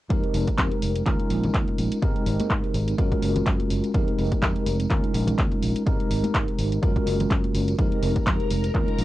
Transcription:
0.09 fingered electric bass F2, tine electric piano G#3 C4 D#4 G4 A#4, kick, closed hi-hat, tambourine
0.24 closed hi-hat
0.34 fingered electric bass F1, open hi-hat, tambourine
0.48 kick, closed hi-hat, tambourine, high conga
0.58 fingered electric bass F2, kick, clap, closed hi-hat, tambourine
0.72 closed hi-hat
0.82 fingered electric bass F1, open hi-hat, tambourine
0.96 closed hi-hat, tambourine
1.06 fingered electric bass D#2, tine electric piano G#3 C#4 D#4 F4 A#4, kick, clap, closed hi-hat, tambourine, high conga
1.20 closed hi-hat
1.30 fingered electric bass A#1, open hi-hat, tambourine
1.44 closed hi-hat, tambourine, low conga
1.54 fingered electric bass D#2, kick, clap, closed hi-hat
1.68 closed hi-hat, high conga
1.78 fingered electric bass A#1, open hi-hat, tambourine
1.92 closed hi-hat, tambourine
2.02 fingered electric bass G#2, tine electric piano G#3 C4 D#4 G4 A#4, kick, closed hi-hat
2.16 closed hi-hat
2.26 fingered electric bass G#1, open hi-hat, tambourine
2.40 muted fingered electric bass stroke, closed hi-hat, tambourine, high conga
2.50 fingered electric bass G#2, kick, clap, closed hi-hat, tambourine
2.64 closed hi-hat
2.74 fingered electric bass G#1, open hi-hat, tambourine
2.88 closed hi-hat, tambourine
2.98 fingered electric bass F#2, tine electric piano G#3 C#4 F4 F#4 A#4, kick, closed hi-hat, tambourine, high conga
3.12 kick, closed hi-hat
3.22 fingered electric bass F#1, open hi-hat, tambourine
3.36 closed hi-hat, tambourine, low conga
3.46 fingered electric bass F#2, kick, clap, closed hi-hat, tambourine
3.60 closed hi-hat, high conga
3.70 fingered electric bass F#1, open hi-hat, tambourine
3.84 closed hi-hat, tambourine
3.94 fingered electric bass F2, tine electric piano G#3 C4 D#4 G4 A#4, kick, closed hi-hat, tambourine
4.08 closed hi-hat
4.18 fingered electric bass F1, open hi-hat, tambourine
4.32 muted fingered electric bass stroke, kick, closed hi-hat, tambourine, high conga
4.42 fingered electric bass F2, kick, clap, closed hi-hat, tambourine
4.56 closed hi-hat
4.66 fingered electric bass F1, open hi-hat, tambourine
4.80 closed hi-hat, tambourine
4.90 fingered electric bass D#2, tine electric piano G#3 C#4 D#4 F4 A#4, kick, clap, closed hi-hat, tambourine, high conga
5.04 closed hi-hat
5.14 fingered electric bass A#1, open hi-hat, tambourine
5.27 closed hi-hat, tambourine, low conga
5.39 fingered electric bass D#2, kick, clap, closed hi-hat
5.52 closed hi-hat, high conga
5.62 fingered electric bass A#1, open hi-hat, tambourine
5.76 closed hi-hat, tambourine
5.86 fingered electric bass G#2, tine electric piano G#3 C4 D#4 G4 A#4, kick, closed hi-hat, tambourine
6.00 closed hi-hat
6.10 fingered electric bass G#1, open hi-hat, tambourine
6.24 muted fingered electric bass stroke, closed hi-hat, tambourine, high conga
6.35 fingered electric bass G#2, kick, clap, closed hi-hat
6.48 closed hi-hat
6.58 fingered electric bass G#1, open hi-hat, tambourine
6.72 closed hi-hat, tambourine
6.82 fingered electric bass F#2, tine electric piano G#3 C#4 F4 F#4 A#4, kick, closed hi-hat, tambourine, high conga
6.96 kick, closed hi-hat
7.06 fingered electric bass F#1, open hi-hat, tambourine
7.20 closed hi-hat, tambourine, low conga
7.31 fingered electric bass F#2, kick, clap, closed hi-hat
7.44 closed hi-hat, high conga
7.54 fingered electric bass F#1, open hi-hat, tambourine
7.68 closed hi-hat, tambourine
7.78 fingered electric bass F2, tine electric piano G#3 C4 D#4 G4 A#4, string machine A#4 A#5, kick, closed hi-hat
7.92 closed hi-hat
8.03 fingered electric bass F1, open hi-hat, tambourine
8.16 kick, closed hi-hat, tambourine, high conga
8.27 fingered electric bass F2, kick, clap, closed hi-hat, tambourine
8.40 closed hi-hat
8.50 fingered electric bass F1, open hi-hat, tambourine
8.64 closed hi-hat, tambourine
8.74 fingered electric bass D#2, tine electric piano G#3 C#4 D#4 F4 A#4, kick, clap, closed hi-hat, tambourine, high conga
8.88 closed hi-hat
8.98 fingered electric bass A#1, open hi-hat, tambourine

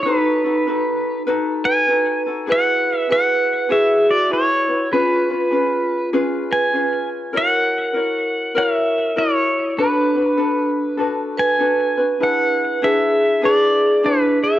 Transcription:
0.02 vibraphone D#4, pedal steel guitar B4, ukulele B4
0.06 ukulele D#4 F#4 A4
0.44 ukulele D#4 F#4 A4
0.67 ukulele D#4 F#4 A4 B4
1.27 ukulele D#4 F#4 A4 B4
1.64 vibraphone B4, pedal steel guitar G#5
1.87 ukulele D#4 F#4 A4 B4
2.26 ukulele D#4 F#4 A4
2.47 ukulele E4 F#4 G#4 B4, vibraphone B4
2.52 pedal steel guitar F#5
2.99 pedal steel guitar E5
3.09 ukulele E4 F#4 G#4 B4, vibraphone B4, pedal steel guitar F#5
3.69 ukulele E4 F#4 G#4 B4, vibraphone G#4, pedal steel guitar E5
4.09 vibraphone F#4, pedal steel guitar D5
4.30 ukulele E4 F#4 G#4 B4, vibraphone E4, pedal steel guitar C#5
4.68 ukulele E4 F#4 B4
4.91 ukulele C#4 F4 G#4 B4, vibraphone F4, pedal steel guitar B4
5.30 ukulele C#4 F4 B4
5.51 ukulele C#4 F4 G#4 B4
6.13 ukulele C#4 F4 G#4 B4
6.51 vibraphone B4, pedal steel guitar G#5
6.73 ukulele C#4 F4 G#4 B4
7.33 ukulele E4 F#4 A#4 C#5, vibraphone A#4
7.37 pedal steel guitar F#5
7.93 ukulele E4 F#4 A#4 C#5
8.55 ukulele E4 F#4 A#4 C#5, vibraphone A#4, pedal steel guitar E5
9.16 ukulele E4 F#4 A#4 C#5, vibraphone E4, pedal steel guitar C#5
9.78 vibraphone D4, ukulele D4 F#4 A4 B4, pedal steel guitar B4
10.15 ukulele D4 F#4 B4
10.37 ukulele D4 F#4 A4 B4
10.97 ukulele D4 F#4 A4 B4
11.38 vibraphone B4, pedal steel guitar G#5
11.59 ukulele D4 F#4 A4 B4
11.98 ukulele D4 F#4 B4
12.20 ukulele D4 E4 G#4 B4, vibraphone B4, pedal steel guitar F#5
12.82 ukulele D4 E4 G#4 B4, vibraphone G#4, pedal steel guitar E5
13.42 ukulele D4 E4 G#4 B4, vibraphone G#4, pedal steel guitar D5
14.03 vibraphone D4, ukulele D4 E4 G#4 B4, pedal steel guitar B4
14.43 vibraphone G#4, pedal steel guitar E5

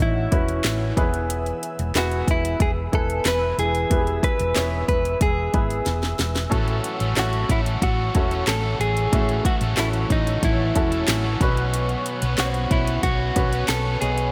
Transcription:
Already playing: grand piano A2 E3 A3 C#4 E4 F#4 A4, analog synth pad C#5 F#5 E6, downlifter
0.00 fingered electric bass A1, clean electric guitar E4
0.31 fingered electric bass E1, grand piano C#4 E4 F#4 B4, kick, closed hi-hat
0.48 closed hi-hat
0.64 fingered electric bass A1, snare, clap, closed hi-hat
0.96 fingered electric bass E1, grand piano E3 B3 E4 G#4 B4, analog synth pad B4 E5 G#5 E6, kick, closed hi-hat
1.14 closed hi-hat
1.30 closed hi-hat
1.46 closed hi-hat
1.63 closed hi-hat
1.79 fingered electric bass E1, closed hi-hat
1.95 fingered electric bass E1, grand piano B3 E4 G#4 B4, clean electric guitar F#4, snare, clap, closed hi-hat
2.12 closed hi-hat
2.28 fingered electric bass E1, clean electric guitar E4, kick, closed hi-hat
2.45 closed hi-hat
2.60 fingered electric bass E1, clean electric guitar G#4, kick, closed hi-hat
2.92 fingered electric bass E1, grand piano B3 E4 B4 G#5, clean electric guitar A4, kick, closed hi-hat
3.10 closed hi-hat
3.25 fingered electric bass E1, clean electric guitar B4, snare, clap, closed hi-hat
3.58 fingered electric bass E1, grand piano E3, clean electric guitar G#4, closed hi-hat
3.75 closed hi-hat
3.90 fingered electric bass E1, grand piano B3 E4 G4 B4, kick, closed hi-hat
3.97 grand piano G#4
4.07 closed hi-hat
4.23 clean electric guitar B4, kick, closed hi-hat
4.40 fingered electric bass E1, closed hi-hat
4.54 fingered electric bass E1, grand piano B3 E4 G#4 C#5, snare, clap, closed hi-hat
4.88 fingered electric bass E1, clean electric guitar B4, kick, closed hi-hat
5.05 closed hi-hat
5.21 fingered electric bass E1, clean electric guitar G#4, kick, closed hi-hat
5.53 fingered electric bass G#1, grand piano B3 E4 G#4 B4, kick, closed hi-hat
5.70 closed hi-hat
5.86 fingered electric bass E1, snare, closed hi-hat
6.03 snare, closed hi-hat
6.19 fingered electric bass E1, snare, closed hi-hat
6.36 snare, closed hi-hat
6.50 fingered electric bass A1, grand piano A2 C#4 E4 F#4 A4, overdriven electric guitar A2 E3 F#3 A3 C#4, analog synth pad C#5 F#5, kick, closed hi-hat
6.54 overdriven electric guitar A4
6.68 closed hi-hat
6.84 closed hi-hat
7.00 fingered electric bass A1, overdriven electric guitar F#3 A3 C#4 A4, closed hi-hat
7.16 fingered electric bass A1, grand piano C#4 E4 F#4 A4, clean electric guitar F#4, snare, clap, closed hi-hat
7.33 closed hi-hat
7.49 fingered electric bass A1, overdriven electric guitar F#3 A3 C#4 A4, clean electric guitar E4, kick, closed hi-hat
7.66 closed hi-hat
7.81 fingered electric bass A1, overdriven electric guitar A2 E3 F#3 A3 C#4 A4, clean electric guitar F#4, kick, closed hi-hat
8.15 fingered electric bass E1, grand piano C#4 E4 F#4 A4, kick, closed hi-hat
8.30 overdriven electric guitar F#3 A3 C#4 A4, closed hi-hat
8.47 fingered electric bass A1, clean electric guitar A4, snare, clap, closed hi-hat
8.63 overdriven electric guitar A2 E3 F#3 A3 C#4 A4
8.80 fingered electric bass A1, clean electric guitar G#4, closed hi-hat
8.97 closed hi-hat
9.12 fingered electric bass A1, overdriven electric guitar A2 E3 F#3 A3 C#4 A4, grand piano A2 A3 C#4 E4 F#4, kick, closed hi-hat
9.29 closed hi-hat
9.45 clean electric guitar F#4, kick, closed hi-hat
9.61 fingered electric bass A1, overdriven electric guitar F#3 A3 C#4 A4, closed hi-hat
9.76 fingered electric bass A1, grand piano E3 C#4 F#4 A4, clean electric guitar E4, snare, clap, closed hi-hat
9.93 closed hi-hat
10.09 fingered electric bass A1, overdriven electric guitar F#3 A3 C#4 A4, clean electric guitar D#4, kick, closed hi-hat
10.27 closed hi-hat
10.42 fingered electric bass A1, overdriven electric guitar A2 E3 F#3 A3 C#4 A4, clean electric guitar E4, kick, closed hi-hat
10.75 fingered electric bass E1, grand piano C#4 E4 F#4 A4, kick, closed hi-hat
10.91 overdriven electric guitar F#3 A3 C#4 A4, closed hi-hat
11.08 fingered electric bass A1, snare, clap, closed hi-hat
11.24 overdriven electric guitar A2 E3 F#3 A3 C#4 A4
11.40 fingered electric bass B1, overdriven electric guitar B2 F#3 B3 C#4 B4, grand piano B2 B3 C#4 F#4 B4, analog synth pad B4 C#5 C#6, kick, closed hi-hat
11.57 closed hi-hat
11.74 closed hi-hat
11.89 closed hi-hat
12.06 closed hi-hat
12.21 fingered electric bass B1, overdriven electric guitar B3 C#4 B4, closed hi-hat
12.38 fingered electric bass B1, grand piano B3 C#4 F#4 C5, clean electric guitar F#4, snare, clap, closed hi-hat
12.46 grand piano C#5
12.54 closed hi-hat
12.70 fingered electric bass B1, overdriven electric guitar F#3 B3 C#4 B4, clean electric guitar E4, kick, closed hi-hat
12.87 closed hi-hat
13.03 fingered electric bass B1, overdriven electric guitar B2 F#3 B3 C#4 B4, clean electric guitar F#4, kick, closed hi-hat
13.35 fingered electric bass B1, grand piano B3 C#4 F#4 B4, kick, closed hi-hat
13.52 overdriven electric guitar B3 C#4 B4, closed hi-hat
13.68 fingered electric bass B1, clean electric guitar A4, snare, clap, closed hi-hat
13.85 overdriven electric guitar B2 F#3 B3 C#4 B4
14.01 fingered electric bass B1, grand piano B2, clean electric guitar G#4, analog synth pad B5, closed hi-hat
14.18 closed hi-hat

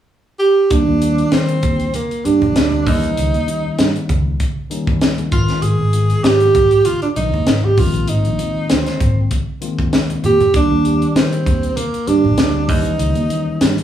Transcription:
0.39 tenor saxophone G4
0.70 fingered electric bass D#2, tine electric piano D#3 G3 A#3 D4 F4, tenor saxophone D4, kick, closed hi-hat
0.88 fingered electric bass D#2
1.01 tine electric piano D#3 G3 A#3 D4 F4, closed hi-hat
1.18 closed hi-hat
1.32 fingered electric bass D#3, tenor saxophone C4, snare, closed hi-hat
1.48 closed hi-hat
1.63 fingered electric bass D#2, kick, closed hi-hat, high conga, low conga
1.80 closed hi-hat
1.94 tenor saxophone A#3, closed hi-hat, high conga
2.11 muted fingered electric bass stroke, closed hi-hat
2.24 fingered electric bass G2, tine electric piano D3 G3 A#3 D4 G4, tenor saxophone D4, closed hi-hat
2.42 fingered electric bass A#1, high conga, low conga
2.56 fingered electric bass D2, snare, closed hi-hat
2.72 high conga
2.85 fingered electric bass D#2, tine electric piano D#3 E3 G3 A#3 C#4, tenor saxophone D#4, kick, open hi-hat, low conga
3.03 closed hi-hat
3.17 fingered electric bass C#2, closed hi-hat
3.34 fingered electric bass D#2, closed hi-hat
3.47 tine electric piano D#3 G3 A#3 C#4 D#4, closed hi-hat
3.65 muted fingered electric bass stroke
3.79 fingered electric bass G2, snare, closed hi-hat
3.96 closed hi-hat
4.09 fingered electric bass C#2, kick, closed hi-hat, high conga, low conga
4.40 kick, closed hi-hat, high conga
4.70 tine electric piano D#3 G3 A#3 C#4 D#4, closed hi-hat
4.87 kick, high conga, low conga
5.01 snare, closed hi-hat
5.18 closed hi-hat, high conga
5.32 fingered electric bass G#1, tine electric piano D#3 F3 G#3 B3 F4, tenor saxophone F4, kick, closed hi-hat, low conga
5.48 muted fingered electric bass stroke, snare, closed hi-hat
5.62 fingered electric bass G#1, tenor saxophone G#4, closed hi-hat
5.79 fingered electric bass G#1
5.93 tine electric piano D#3 F3 G#3 B3 F4, closed hi-hat
6.10 closed hi-hat
6.24 fingered electric bass G#2, tenor saxophone G4, snare, closed hi-hat
6.40 closed hi-hat
6.55 fingered electric bass G#1, kick, closed hi-hat, high conga, low conga
6.71 closed hi-hat
6.85 tenor saxophone F4, closed hi-hat, high conga
7.02 tenor saxophone D4, muted fingered electric bass stroke, closed hi-hat
7.16 fingered electric bass B1, tine electric piano D#3 F3 G#3 B3 D#4, tenor saxophone D#4, closed hi-hat
7.33 fingered electric bass D#2, high conga, low conga
7.47 fingered electric bass G#1, snare, closed hi-hat
7.64 tenor saxophone G4, high conga
7.77 fingered electric bass A#1, tine electric piano D#3 G#3 A#3 C4 F4, tenor saxophone F4, kick, open hi-hat, low conga
7.94 closed hi-hat
8.08 fingered electric bass G#1, tenor saxophone D#4, closed hi-hat
8.25 fingered electric bass A#1, closed hi-hat
8.39 tine electric piano D#3 G#3 A#3 C4 F4, closed hi-hat, high conga
8.57 muted fingered electric bass stroke
8.70 fingered electric bass D2, tenor saxophone C4, snare, closed hi-hat
8.86 snare, closed hi-hat
9.00 fingered electric bass G#1, kick, closed hi-hat, high conga, low conga
9.31 kick, closed hi-hat, high conga
9.61 tine electric piano D#3 G#3 A#3 C4 F4, closed hi-hat
9.79 kick, high conga, low conga
9.93 snare, closed hi-hat, high conga
10.10 closed hi-hat, high conga
10.24 fingered electric bass A#2, tenor saxophone G4, closed hi-hat, low conga
10.40 muted fingered electric bass stroke, closed hi-hat, low conga
10.53 fingered electric bass D#2, tine electric piano D#3 G3 A#3 D4 F4, tenor saxophone D4, kick, closed hi-hat
10.71 fingered electric bass D#2
10.84 tine electric piano D#3 G3 A#3 D4 G4, closed hi-hat
11.02 closed hi-hat
11.09 tenor saxophone D4
11.16 fingered electric bass D#3, tenor saxophone C4, snare, closed hi-hat
11.33 closed hi-hat
11.46 fingered electric bass D#2, kick, closed hi-hat, low conga
11.63 closed hi-hat
11.77 tenor saxophone A#3, closed hi-hat, high conga
11.94 muted fingered electric bass stroke, closed hi-hat
12.06 fingered electric bass G2, tine electric piano D3 G3 A#3 D4 G4, tenor saxophone D4, closed hi-hat
12.24 fingered electric bass A#1, low conga
12.37 fingered electric bass D2, snare, closed hi-hat
12.67 fingered electric bass D#2, tine electric piano D#3 E3 G3 A#3 C#4, tenor saxophone D#4, kick, open hi-hat, low conga
12.85 closed hi-hat
12.99 fingered electric bass C#2, closed hi-hat
13.15 fingered electric bass D#2, closed hi-hat
13.29 tine electric piano D#3 E3 G3 A#3 C#4, closed hi-hat
13.47 muted fingered electric bass stroke
13.61 fingered electric bass G2, snare, closed hi-hat
13.78 closed hi-hat

